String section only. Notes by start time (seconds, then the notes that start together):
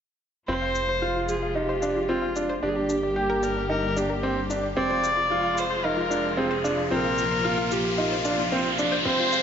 0.49 C3 F3 G#3 F4
2.62 D3 G3 A#3 G4
4.76 C3 F3 G#3 F4
6.91 A#3 F4
9.05 G#3